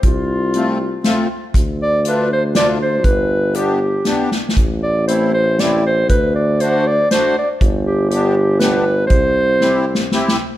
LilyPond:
<<
  \new Staff \with { instrumentName = "Clarinet" } { \time 3/4 \key g \mixolydian \tempo 4 = 119 f'2~ f'8 r8 | r8 d''8 b'8 c''8 d''8 c''8 | b'4 g'4. r8 | r8 d''8 c''8 c''8 d''8 c''8 |
b'8 d''8 c''8 d''8 c''8 d''8 | r8 g'8 g'4 b'4 | c''2 r4 | }
  \new Staff \with { instrumentName = "Accordion" } { \time 3/4 \key g \mixolydian r4 <a c' f'>8 r8 <a c' f'>8 r8 | r4 <a d' f'>8 r8 <a d' f'>8 r8 | r4 <b d' g'>8 r8 <b d' g'>8 r8 | r4 <a c' e'>8 r8 <a c' e'>8 r8 |
r4 <a d' fis'>8 r8 <a d' fis'>8 r8 | r4 <b d' g'>8 r8 <b d' g'>8 r8 | r4 <c' e' g'>8 r8 <c' e' g'>8 r8 | }
  \new Staff \with { instrumentName = "Tuba" } { \clef bass \time 3/4 \key g \mixolydian c,2. | d,2. | g,,2. | a,,2. |
d,2. | g,,2. | c,2. | }
  \new DrumStaff \with { instrumentName = "Drums" } \drummode { \time 3/4 <hh bd>4 hh4 <hh sn>4 | <hh bd>4 hh4 <hh sn>4 | <hh bd>4 hh4 \tuplet 3/2 { <hh sn>16 r16 r16 sn16 r16 sn16 } | <hh bd>4 hh4 <hh sn>4 |
<hh bd>4 hh4 <hh sn>4 | <hh bd>4 hh4 <hh sn>4 | <hh bd>4 \tuplet 3/2 { sn8 r8 sn8 sn8 sn8 r8 } | }
>>